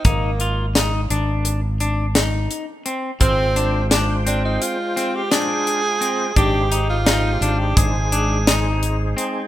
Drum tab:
HH |xxxxxxxxx|xxxxxxxxx|xxxxxxxxx|
SD |--o---o--|--o--oo--|--o---o--|
BD |o--------|o--------|o---o----|